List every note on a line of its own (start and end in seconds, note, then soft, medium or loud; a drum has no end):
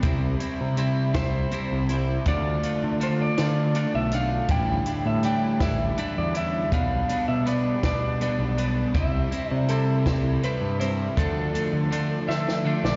0.02 0.34 C2 medium
0.02 0.76 C3 medium
0.02 0.41 G3 medium
0.02 0.40 C4 medium
0.02 0.39 E4 medium
0.02 kick loud
0.02 closed hi-hat medium
0.40 0.77 G3 medium
0.40 0.77 C4 medium
0.40 0.78 E4 medium
0.40 closed hi-hat medium
0.61 1.16 C3 medium
0.77 1.50 C3 medium
0.77 1.16 G3 medium
0.77 1.14 C4 medium
0.77 1.13 E4 medium
0.77 closed hi-hat medium
1.14 1.45 C2 medium
1.14 1.51 G3 medium
1.14 1.52 C4 medium
1.14 1.53 E4 medium
1.14 1.86 C5 loud
1.14 kick medium
1.14 snare loud
1.14 closed hi-hat medium
1.51 2.24 C3 medium
1.51 1.90 G3 medium
1.51 1.89 C4 medium
1.51 1.88 E4 medium
1.51 closed hi-hat medium
1.72 2.17 C2 medium
1.89 2.25 G3 medium
1.89 2.25 C4 medium
1.89 2.24 E4 medium
1.89 closed hi-hat medium
2.25 2.57 D2 medium
2.25 2.99 D3 medium
2.25 2.65 A3 medium
2.25 2.64 D4 medium
2.25 2.62 F4 medium
2.25 2.98 D5 medium
2.25 kick loud
2.25 closed hi-hat medium
2.63 3.01 A3 medium
2.63 3.01 D4 medium
2.63 3.01 F4 medium
2.63 closed hi-hat medium
2.84 3.29 D3 medium
3.00 3.74 D3 medium
3.00 3.38 A3 medium
3.00 3.38 D4 medium
3.00 3.36 F4 medium
3.00 3.21 C5 medium
3.00 closed hi-hat medium
3.22 3.95 D5 medium
3.37 3.84 D3 medium
3.37 3.74 A3 medium
3.37 3.76 D4 medium
3.37 3.76 F4 medium
3.37 snare loud
3.37 closed hi-hat medium
3.75 4.47 D3 medium
3.75 4.13 A3 medium
3.75 4.13 D4 medium
3.75 4.11 F4 medium
3.75 closed hi-hat medium
3.94 4.40 B1 medium
3.94 4.12 E5 loud
4.11 4.48 A3 medium
4.11 4.50 D4 medium
4.11 4.47 F4 medium
4.11 4.48 F5 medium
4.11 closed hi-hat medium
4.48 4.80 A1 medium
4.48 5.24 A2 medium
4.48 5.22 D3 medium
4.48 5.22 E3 medium
4.48 4.89 G3 medium
4.48 4.88 D4 medium
4.48 4.86 E4 medium
4.48 5.02 G5 loud
4.48 kick loud
4.48 closed hi-hat medium
4.86 5.24 G3 soft
4.86 5.25 D4 medium
4.86 5.25 E4 medium
4.86 closed hi-hat medium
5.06 5.62 A2 medium
5.06 5.23 E5 medium
5.23 5.96 D3 medium
5.23 5.96 E3 medium
5.23 5.62 G3 medium
5.23 5.60 D4 medium
5.23 5.59 E4 medium
5.23 5.59 G5 medium
5.23 closed hi-hat medium
5.60 5.91 A1 medium
5.60 5.98 G3 medium
5.60 5.98 D4 medium
5.60 5.98 E4 medium
5.60 6.18 E5 loud
5.60 kick medium
5.60 snare loud
5.60 closed hi-hat medium
5.97 6.70 D3 medium
5.97 6.70 E3 medium
5.97 6.36 G3 medium
5.97 6.35 D4 medium
5.97 6.33 E4 medium
5.97 closed hi-hat medium
6.18 6.63 E2 medium
6.18 6.35 D5 medium
6.35 6.73 G3 medium
6.35 6.71 C#4 medium
6.35 6.71 D4 medium
6.35 6.70 E4 medium
6.35 6.71 E5 medium
6.35 closed hi-hat medium
6.72 7.03 B1 medium
6.72 7.44 B2 medium
6.72 7.11 G3 medium
6.72 7.09 B3 medium
6.72 7.08 D4 medium
6.72 7.28 F5 loud
6.72 kick loud
6.72 closed hi-hat medium
7.09 7.46 G3 medium
7.09 7.46 B3 medium
7.09 7.47 D4 medium
7.09 closed hi-hat medium
7.28 7.74 B2 medium
7.28 7.47 E5 medium
7.46 8.20 B2 medium
7.46 7.84 G3 medium
7.46 7.83 B3 medium
7.46 7.82 D4 medium
7.46 7.84 D5 medium
7.46 closed hi-hat medium
7.83 8.29 B2 medium
7.83 8.20 G3 medium
7.83 8.21 B3 medium
7.83 8.21 D4 medium
7.83 8.64 D5 medium
7.83 kick medium
7.83 snare loud
7.83 closed hi-hat medium
8.21 8.93 B2 medium
8.21 8.59 G3 medium
8.21 8.57 B3 medium
8.21 8.56 D4 medium
8.21 closed hi-hat medium
8.39 8.84 B1 medium
8.57 8.94 G3 medium
8.57 8.93 B3 medium
8.57 8.93 D4 medium
8.57 closed hi-hat medium
8.94 9.25 C2 medium
8.94 9.67 C3 medium
8.94 9.32 G3 loud
8.94 9.32 C4 medium
8.94 9.30 E4 loud
8.94 9.51 E5 medium
8.94 kick loud
8.94 closed hi-hat medium
9.31 9.68 G3 medium
9.31 9.69 C4 medium
9.31 9.69 E4 medium
9.31 closed hi-hat medium
9.51 10.08 C3 medium
9.51 9.72 D5 medium
9.68 10.42 C3 medium
9.68 10.07 G3 medium
9.68 10.06 C4 medium
9.68 10.05 E4 medium
9.68 10.44 A4 medium
9.68 closed hi-hat medium
10.06 10.36 C2 medium
10.06 10.43 G3 medium
10.06 10.43 C4 medium
10.06 10.44 E4 medium
10.06 kick medium
10.06 snare loud
10.06 closed hi-hat medium
10.43 11.15 C3 medium
10.43 10.81 G3 medium
10.43 10.80 C4 medium
10.43 10.78 E4 medium
10.43 10.80 B4 medium
10.43 closed hi-hat medium
10.61 11.07 G2 medium
10.80 11.16 G3 medium
10.80 11.16 C4 medium
10.80 11.15 E4 medium
10.80 10.90 C5 medium
10.80 closed hi-hat medium
11.17 11.48 D2 medium
11.17 11.90 D3 medium
11.17 11.55 F3 medium
11.17 11.54 A3 medium
11.17 11.53 D4 medium
11.17 12.96 A4 medium
11.17 kick loud
11.17 closed hi-hat medium
11.54 11.91 F3 medium
11.54 11.91 A3 medium
11.54 11.92 D4 medium
11.54 closed hi-hat medium
11.73 12.19 D3 medium
11.91 12.64 D3 medium
11.91 12.29 F3 medium
11.91 12.28 A3 medium
11.91 12.26 D4 medium
11.91 closed hi-hat medium
12.27 12.74 D3 medium
12.27 12.65 F3 medium
12.27 12.65 A3 medium
12.27 12.66 D4 medium
12.27 12.80 E5 medium
12.27 snare medium
12.48 snare medium
12.65 12.96 D3 medium
12.65 12.96 F3 medium
12.65 12.96 A3 medium
12.65 12.96 D4 medium
12.84 12.96 A#1 medium
12.84 12.96 D5 medium
12.84 snare medium